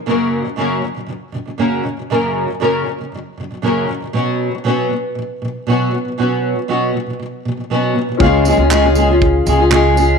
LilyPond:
<<
  \new Staff \with { instrumentName = "Felt piano" } { \time 4/4 \key des \mixolydian \tempo 4 = 118 r1 | r1 | r1 | r1 |
<des' f' aes' f''>1 | }
  \new Staff \with { instrumentName = "Nylon-string guitar" } { \clef bass \time 4/4 \key des \mixolydian <ges, des ges bes des' bes'>8. <ges, des ges>16 <ges, des ges bes des' bes'>8 <ges, des ges>16 <ges, des ges>16 <ges, des ges>8 <ges, des ges>16 <ges, des ges>16 <ges, des ges bes des' bes'>8 <ges, des ges>16 <ges, des ges>16 | <ges, des ges bes des' bes'>8. <ges, des ges>16 <ges, des ges bes des' bes'>8 <ges, des ges>16 <ges, des ges>16 <ges, des ges>8 <ges, des ges>16 <ges, des ges>16 <ges, des ges bes des' bes'>8 <ges, des ges>16 <ges, des ges>16 | <ces ges ces' des' ges'>8. <ces ges>16 <ces ges ces' des' ges'>8 <ces ges>8 <ces ges>8 <ces ges>8 <ces ges ces' des' ges'>8 <ces ges>16 <ces ges>16 | <ces ges ces' des' ges'>8. <ces ges>16 <ces ges ces' des' ges'>8 <ces ges>16 <ces ges>16 <ces ges>8 <ces ges>16 <ces ges>16 <ces ges ces' des' ges'>8 <ces ges>16 <ces ges>16 |
<des aes des' f' aes'>8 <aes des' f' aes'>16 <des' f' aes'>16 <des aes des' f' aes'>16 <des' f' aes'>16 <aes des' f' aes'>16 <des' f' aes'>8. <aes des' f' aes'>16 <des' f' aes'>16 <des aes des' f' aes'>8 <aes des' f' aes'>8 | }
  \new Staff \with { instrumentName = "Upright bass" } { \clef bass \time 4/4 \key des \mixolydian r1 | r1 | r1 | r1 |
des,8. des,4.~ des,16 des,4. | }
  \new DrumStaff \with { instrumentName = "Drums" } \drummode { \time 4/4 r4 r4 r4 r4 | r4 r4 r4 r4 | r4 r4 r4 r4 | r4 r4 r4 r4 |
bd8 tamb8 hc8 tamb8 bd8 tamb8 hc8 tamb8 | }
>>